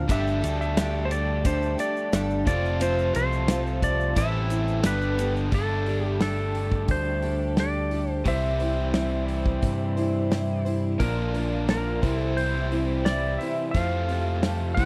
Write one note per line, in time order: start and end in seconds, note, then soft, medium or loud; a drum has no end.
0.00 0.11 F5 loud
0.08 0.40 G1 loud
0.08 0.43 G2 medium
0.08 0.43 D3 medium
0.08 0.43 G3 medium
0.08 2.48 A3 medium
0.08 0.42 D4 medium
0.08 2.45 D4 medium
0.08 2.45 G4 medium
0.08 0.41 G4 medium
0.08 2.45 A4 medium
0.08 0.40 A4 medium
0.08 0.60 E5 loud
0.08 kick loud
0.08 ride medium
0.08 shaker medium
0.27 shaker soft
0.42 1.75 D2 medium
0.42 0.76 G3 soft
0.42 0.76 D4 soft
0.42 0.77 G4 soft
0.42 0.76 A4 medium
0.42 ride medium
0.42 shaker medium
0.61 1.06 E5 medium
0.61 shaker soft
0.77 1.45 G2 medium
0.77 1.45 D3 medium
0.77 1.43 G3 medium
0.77 1.44 D4 medium
0.77 1.45 G4 medium
0.77 1.47 A4 medium
0.77 snare loud
0.77 ride loud
0.77 shaker medium
1.05 1.11 C5 medium
1.11 1.46 D5 medium
1.11 ride medium
1.11 shaker medium
1.44 1.78 G3 medium
1.44 1.79 D4 medium
1.44 1.78 G4 medium
1.44 1.76 A4 medium
1.44 1.77 C5 medium
1.44 kick loud
1.44 ride loud
1.44 shaker medium
1.62 shaker soft
1.78 2.12 G3 soft
1.78 2.12 D4 soft
1.78 2.13 G4 medium
1.78 2.12 A4 soft
1.78 2.43 D5 medium
1.78 ride medium
1.78 shaker medium
1.96 shaker soft
2.12 2.44 G1 medium
2.12 2.46 G2 medium
2.12 2.47 D3 medium
2.12 2.47 G3 medium
2.12 2.47 D4 medium
2.12 2.47 G4 medium
2.12 2.45 A4 medium
2.12 snare loud
2.12 ride medium
2.12 shaker medium
2.30 shaker soft
2.46 3.11 F1 loud
2.46 4.14 F2 medium
2.46 4.14 C3 medium
2.46 4.15 F3 medium
2.46 4.15 A3 medium
2.46 4.15 C4 medium
2.46 2.80 C4 soft
2.46 4.15 F4 medium
2.46 2.80 F4 medium
2.46 2.80 A4 medium
2.46 4.15 A4 medium
2.46 2.82 D5 medium
2.46 kick loud
2.46 ride medium
2.46 shaker medium
2.65 shaker soft
2.80 3.14 F3 medium
2.80 3.15 C4 medium
2.80 3.15 F4 medium
2.80 3.13 A4 medium
2.80 3.13 C5 medium
2.80 ride medium
2.80 shaker medium
2.99 shaker soft
3.14 4.13 C2 medium
3.14 3.48 C4 soft
3.14 3.49 F4 soft
3.14 3.48 A4 medium
3.14 3.83 C5 medium
3.14 ride medium
3.14 shaker medium
3.32 shaker soft
3.48 4.15 F3 medium
3.48 4.15 C4 medium
3.48 4.17 F4 medium
3.48 4.17 A4 medium
3.48 snare loud
3.48 ride medium
3.48 shaker medium
3.67 shaker soft
3.82 4.18 D5 medium
3.82 kick medium
3.82 ride medium
3.82 shaker medium
4.00 shaker soft
4.15 4.81 A1 medium
4.15 4.82 A2 medium
4.15 4.82 E3 medium
4.15 4.50 G3 medium
4.15 4.83 A3 medium
4.15 4.50 C4 medium
4.15 4.84 C4 medium
4.15 4.50 E4 medium
4.15 4.84 G4 medium
4.15 4.84 A4 medium
4.15 4.49 A4 medium
4.15 4.87 E5 medium
4.15 kick loud
4.15 ride medium
4.15 shaker medium
4.50 4.84 G3 soft
4.50 4.85 C4 soft
4.50 4.85 E4 medium
4.50 4.84 A4 medium
4.50 ride medium
4.50 shaker medium
4.68 shaker soft
4.83 5.49 G1 medium
4.83 5.18 G2 medium
4.83 5.19 D3 medium
4.83 5.19 G3 medium
4.83 5.53 B3 medium
4.83 5.19 B3 medium
4.83 5.18 D4 medium
4.83 5.53 G4 medium
4.83 5.51 G4 loud
4.83 5.52 A4 medium
4.83 5.18 A4 medium
4.83 5.33 B4 medium
4.83 snare loud
4.83 ride loud
4.83 shaker medium
5.02 shaker soft
5.19 5.51 G3 soft
5.19 5.53 B3 soft
5.19 5.52 D4 medium
5.19 5.53 A4 medium
5.19 ride medium
5.19 shaker medium
5.36 shaker soft
5.51 6.85 G1 medium
5.51 5.86 G2 medium
5.51 5.87 D3 medium
5.51 5.87 G3 medium
5.51 8.24 A3 medium
5.51 5.87 D4 medium
5.51 8.24 D4 medium
5.51 5.87 G4 medium
5.51 8.24 G4 medium
5.51 8.24 A4 medium
5.51 5.85 A4 medium
5.51 6.06 A4 medium
5.51 kick medium
5.51 open hi-hat medium
5.86 6.18 G3 soft
5.86 6.19 D4 soft
5.86 6.21 G4 soft
5.86 6.21 A4 soft
5.86 open hi-hat soft
6.06 6.21 G4 medium
6.20 7.23 G3 soft
6.20 7.23 D4 medium
6.20 7.22 G4 medium
6.20 6.92 A4 medium
6.20 7.21 A4 medium
6.20 snare loud
6.20 open hi-hat medium
6.55 open hi-hat medium
6.72 kick medium
6.88 8.22 D2 medium
6.88 7.55 C5 medium
6.88 kick loud
6.88 open hi-hat medium
7.22 7.55 G3 soft
7.22 7.56 D4 soft
7.22 7.57 G4 soft
7.22 7.57 A4 medium
7.22 open hi-hat soft
7.56 7.91 G3 medium
7.56 7.92 D4 medium
7.56 7.91 G4 medium
7.56 7.90 A4 medium
7.56 8.12 D5 medium
7.56 snare medium
7.56 open hi-hat medium
7.91 8.25 G3 soft
7.91 8.26 D4 soft
7.91 8.26 G4 soft
7.91 8.26 A4 soft
7.91 open hi-hat soft
8.12 8.28 C5 medium
8.25 9.59 C2 medium
8.25 8.60 C3 medium
8.25 10.98 E3 medium
8.25 8.60 G3 medium
8.25 8.60 C4 medium
8.25 8.61 E4 medium
8.25 10.98 E4 medium
8.25 10.98 G4 medium
8.25 10.99 G4 medium
8.25 10.98 C5 medium
8.25 8.58 C5 medium
8.25 10.63 E5 loud
8.25 kick medium
8.25 open hi-hat medium
8.60 8.94 C4 soft
8.60 8.95 E4 soft
8.60 8.94 C5 soft
8.60 open hi-hat soft
8.94 9.97 G3 medium
8.94 9.98 C4 soft
8.94 9.97 E4 medium
8.94 9.95 C5 medium
8.94 snare loud
8.94 open hi-hat medium
9.28 open hi-hat soft
9.46 kick medium
9.62 10.96 G2 medium
9.62 kick loud
9.62 open hi-hat medium
9.97 10.31 C4 soft
9.97 10.32 E4 soft
9.97 10.31 C5 medium
9.97 open hi-hat soft
10.31 10.65 G3 medium
10.31 10.66 C4 medium
10.31 10.66 E4 medium
10.31 10.64 C5 medium
10.31 snare loud
10.31 open hi-hat medium
10.65 11.00 C4 soft
10.65 11.01 E4 medium
10.65 11.00 C5 medium
10.65 open hi-hat medium
11.00 11.99 A#1 medium
11.00 11.34 A#2 medium
11.00 11.34 D3 medium
11.00 11.35 F3 medium
11.00 11.35 A#3 medium
11.00 12.02 D4 medium
11.00 11.34 D4 medium
11.00 12.02 F4 medium
11.00 11.69 A#4 medium
11.00 12.02 A#4 medium
11.00 11.33 A#4 medium
11.00 kick medium
11.00 open hi-hat medium
11.34 11.66 F3 soft
11.34 11.68 A#3 soft
11.34 11.68 D4 soft
11.34 11.68 A#4 medium
11.34 open hi-hat medium
11.67 12.02 F3 medium
11.67 12.03 A#3 medium
11.67 12.02 D4 medium
11.67 12.19 A#4 medium
11.67 12.02 A#4 medium
11.67 snare loud
11.67 open hi-hat medium
12.02 13.36 C2 medium
12.02 12.72 C3 soft
12.02 13.72 E3 medium
12.02 13.04 G3 medium
12.02 12.72 C4 soft
12.02 13.73 C4 medium
12.02 12.71 E4 medium
12.02 13.73 E4 medium
12.02 13.73 G4 medium
12.02 12.70 C5 medium
12.02 kick loud
12.02 open hi-hat medium
12.19 12.37 A4 medium
12.37 13.08 C5 medium
12.37 open hi-hat medium
12.71 13.04 C4 soft
12.71 13.05 E4 soft
12.71 13.06 C5 soft
12.71 open hi-hat medium
13.04 13.40 G3 medium
13.04 13.40 C4 medium
13.04 13.40 E4 medium
13.04 13.38 C5 medium
13.04 13.41 D5 medium
13.04 snare medium
13.04 open hi-hat medium
13.38 13.75 E4 soft
13.38 13.74 C5 soft
13.38 13.71 E5 medium
13.38 open hi-hat soft
13.42 13.74 C4 soft
13.71 14.75 F2 medium
13.71 14.74 F2 medium
13.71 14.76 C3 medium
13.71 14.09 F3 medium
13.71 14.77 A3 medium
13.71 14.09 C4 medium
13.71 14.76 G4 medium
13.71 14.72 F5 medium
13.71 kick medium
13.71 open hi-hat medium
13.75 14.76 A3 medium
13.75 14.77 F4 medium
13.75 14.09 G4 medium
13.75 14.07 A4 medium
14.09 14.42 C4 soft
14.09 14.43 G4 soft
14.09 14.43 A4 soft
14.09 open hi-hat soft
14.42 14.77 F3 soft
14.42 14.77 C4 medium
14.42 14.77 G4 medium
14.42 14.76 A4 medium
14.42 snare loud
14.42 open hi-hat medium
14.74 14.85 C2 loud
14.74 14.85 C3 medium
14.74 14.85 E3 medium
14.74 14.85 G3 soft
14.74 14.85 C4 medium
14.74 14.85 E4 medium
14.74 14.85 G4 medium
14.74 14.85 C5 medium
14.74 14.85 G5 medium
14.74 kick loud
14.74 open hi-hat medium